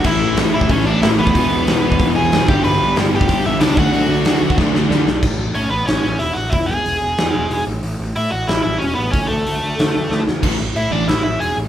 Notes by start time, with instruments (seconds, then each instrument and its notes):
0.02 picked electric bass A1, distorted electric guitar A2 E3 A3 C#4 E4, overdriven electric guitar A2 E3 A3, lead electric guitar E4 E5, kick, crash
0.21 picked electric bass A1, overdriven electric guitar A2 E3 A3
0.37 picked electric bass A1, overdriven electric guitar A2 E3 A3, snare, open hi-hat
0.54 picked electric bass A1, overdriven electric guitar A2 E3 A3, lead electric guitar E4 E5
0.61 kick
0.69 picked electric bass A1, overdriven electric guitar A2 E3 A3, lead electric guitar C#4 C#5, kick, open hi-hat
0.85 picked electric bass A1, overdriven electric guitar A2 E3 A3, lead electric guitar D4 D5
1.02 picked electric bass A1, overdriven electric guitar A2 E3 A3, lead electric guitar E4 E5, snare, open hi-hat
1.18 picked electric bass D#2, overdriven electric guitar A2 E3 A3, lead electric guitar B3 B4
1.27 kick
1.33 picked electric bass E1, overdriven electric guitar E2 B2 E3, distorted electric guitar E3 G#3, kick, open hi-hat
1.38 distorted electric guitar B3 E4
1.49 picked electric bass E1, overdriven electric guitar E2 B2 E3
1.66 picked electric bass E1, overdriven electric guitar E2 B2 E3, snare, open hi-hat
1.83 picked electric bass E1, overdriven electric guitar E2 B2 E3
1.92 kick
1.99 picked electric bass E1, overdriven electric guitar E2 B2 E3, kick, open hi-hat
2.16 picked electric bass E1, overdriven electric guitar E2 B2 E3, lead electric guitar G#4 G#5
2.32 picked electric bass F#1, overdriven electric guitar E2 B2 E3, snare, open hi-hat
2.47 picked electric bass G1, overdriven electric guitar G2 D3 G3, distorted electric guitar G2 D3 G3 B3, lead electric guitar G4 G5, kick
2.52 distorted electric guitar D4
2.64 picked electric bass G1, overdriven electric guitar G2 D3 G3, lead electric guitar B4 B5, open hi-hat
2.80 picked electric bass G1, overdriven electric guitar G2 D3 G3
2.96 picked electric bass G1, overdriven electric guitar G2 D3 G3, snare, open hi-hat
3.12 picked electric bass G1, overdriven electric guitar G2 D3 G3, lead electric guitar G4 G5
3.21 kick
3.28 picked electric bass G1, overdriven electric guitar G2 D3 G3, kick, open hi-hat
3.45 picked electric bass G1, overdriven electric guitar G2 D3 G3, lead electric guitar E4 E5
3.59 picked electric bass C#2, overdriven electric guitar G2 D3 G3, lead electric guitar D4 D5, snare, open hi-hat
3.76 picked electric bass D2, overdriven electric guitar D3 A3 D4, distorted electric guitar D3 F#3 A3, lead electric guitar F#4 F#5, kick
3.81 distorted electric guitar D4
3.92 picked electric bass D2, overdriven electric guitar D3 A3 D4, open hi-hat
4.09 picked electric bass D2, overdriven electric guitar D3 A3 D4
4.25 picked electric bass D2, overdriven electric guitar D3 A3 D4, snare, open hi-hat
4.42 picked electric bass D2, overdriven electric guitar D3 A3 D4
4.50 kick
4.57 picked electric bass D2, overdriven electric guitar D3 A3 D4, kick, snare
4.73 picked electric bass D2, overdriven electric guitar D3 A3 D4, snare
4.89 picked electric bass D2, overdriven electric guitar D3 A3 D4, snare
5.05 picked electric bass B1, overdriven electric guitar D3 A3 D4, snare
5.23 picked electric bass A1, kick, crash
5.38 picked electric bass A1
5.54 picked electric bass A2, lead electric guitar C#4 C#5, open hi-hat
5.70 picked electric bass A1, lead electric guitar B3 B4
5.86 picked electric bass A1, lead electric guitar C#4 C#5, snare, open hi-hat
6.02 picked electric bass A1, lead electric guitar C#4 C#5
6.19 picked electric bass E1, lead electric guitar E4 E5, open hi-hat
6.34 picked electric bass A1, lead electric guitar F#4 F#5
6.50 picked electric bass E1, lead electric guitar E5, kick, open hi-hat
6.54 lead electric guitar E4
6.66 picked electric bass E1, lead electric guitar G#5
6.70 lead electric guitar G#4
6.86 picked electric bass E1, open hi-hat
7.03 picked electric bass E1
7.18 picked electric bass E2, snare, open hi-hat
7.33 picked electric bass E1, lead electric guitar F#5
7.50 picked electric bass E1, open hi-hat
7.67 picked electric bass A1
7.83 picked electric bass A1, open hi-hat
7.99 picked electric bass A1
8.15 picked electric bass A2, lead electric guitar E4 E5, open hi-hat
8.30 picked electric bass A1, lead electric guitar F#4 F#5
8.47 picked electric bass A1, lead electric guitar E4 E5, snare, open hi-hat
8.63 picked electric bass A1, lead electric guitar E4 E5
8.78 lead electric guitar C#4 C#5
8.82 picked electric bass E1, open hi-hat
8.95 picked electric bass A1, lead electric guitar B3 B4
9.10 picked electric bass D2, lead electric guitar C#4 C#5, kick, open hi-hat
9.27 picked electric bass D2, lead electric guitar A3 A4
9.47 picked electric bass D2, open hi-hat
9.63 picked electric bass D2
9.79 picked electric bass D3, snare, open hi-hat
9.96 picked electric bass D2
10.10 picked electric bass D2, snare
10.28 picked electric bass D2, snare
10.42 picked electric bass A1, distorted electric guitar A2 E3 A3 C#4 E4, overdriven electric guitar A2 E3 A3, kick, crash
10.60 picked electric bass A1
10.75 picked electric bass A2, lead electric guitar E4 E5, open hi-hat
10.91 picked electric bass A1, overdriven electric guitar A2 E3 A3, distorted electric guitar A2 E3 A3 C#4 E4, lead electric guitar D4 D5
11.08 picked electric bass A1, lead electric guitar E4 E5, snare, open hi-hat
11.23 picked electric bass A1, lead electric guitar E4 E5
11.40 picked electric bass E1, lead electric guitar G#4 G#5, open hi-hat
11.57 picked electric bass A1